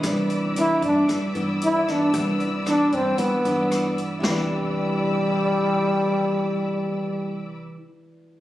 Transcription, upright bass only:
X:1
M:4/4
L:1/8
Q:1/4=114
K:C
V:1 name="Upright bass" clef=bass
C,,3 G,, G,, G,,3 | C,,3 G,, G,, G,,3 | C,,8- | C,,8 |]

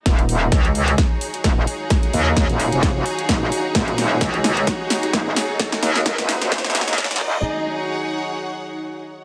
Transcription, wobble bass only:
X:1
M:4/4
L:1/16
Q:"Swing 16ths" 1/4=130
K:Ebm
V:1 name="Wobble bass" clef=bass
E,,,4 D,,4 z4 E,,,2 z2 | z2 E,,3 E,,,2 F,,,3 z2 E,,,2 z2 | E,,,4 D,,4 z4 E,,,2 z2 | z2 E,,3 E,,,2 E,,,2 E,,,2 E,,2 E,,, E,,,2 |
z16 |]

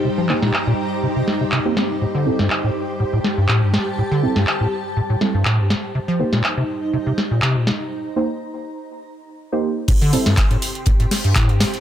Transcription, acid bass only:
X:1
M:4/4
L:1/16
Q:"Swing 16ths" 1/4=122
K:Am
V:1 name="Acid bass" clef=bass
C, F, C, _B,, z B,, z2 C, C, z C, C, C C z | A,, D, A,, G,, z A,, z2 A,, A,, z G,, A,, G,, A,, z | A,, D, A,, G,, z A,, z2 A,, A,, z G,, A,, G,, A,, z | C, F, C, _B,, z C, z2 C, C, z B,, C, B,, C, z |
z16 | A,, D, A,, G,, z A,, z2 A,, A,, z G,, A,, G,, A,, z |]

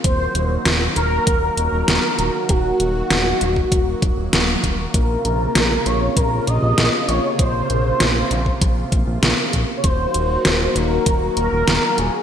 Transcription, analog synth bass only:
X:1
M:4/4
L:1/16
Q:1/4=98
K:Ebdor
V:1 name="Analog synth bass" clef=bass
E,,,2 E,,,2 E,,,2 E,,,2 E,,,2 E,,, E,,, E,,, z E,,, z | E,,,2 E,,,2 E,,,2 E,,,2 E,,,2 E,,, E,,, E,,,2 E,,,2 | B,,,2 B,,,2 B,,,2 B,,,2 B,,,2 B,,, B,,, B,,, z B,,, z | B,,,2 B,,,2 B,,,2 B,,,2 B,,,2 B,,, B,,, B,,, z B,,, z |
E,,,2 E,,,2 E,,,2 E,,,2 E,,,2 E,,, E,,, E,,, z E,,, z |]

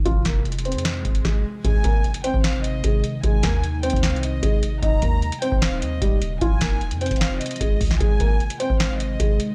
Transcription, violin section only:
X:1
M:4/4
L:1/8
Q:1/4=151
K:Ab
V:1 name="Violin section"
z8 | a3 g f e3 | a3 g f e3 | b3 g f e3 |
a3 g f e3 | a3 g f e3 |]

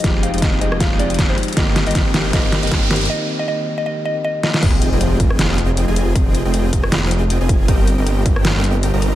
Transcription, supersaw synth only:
X:1
M:4/4
L:1/16
Q:"Swing 16ths" 1/4=157
K:Fdor
V:1 name="Supersaw synth"
[CFAeg]3 [CFAeg]3 [CFAeg]3 [CFAeg]4 [CFAeg] z2 | [CGBeg]3 [CGBeg]3 [CGBeg]2 z3 [CGBeg]3 [CGBeg]2 | z16 | [CFAeg]3 [CFAeg]3 [CFAg]3 [CFAeg]4 [CFAea]3 |
z3 [CFAeg]3 [Ce]3 [CFAeg]4 [CFAea]3 | [CGBeg]3 [CGBeg]3 z3 [CGBeg]4 [CGBeb]3 |]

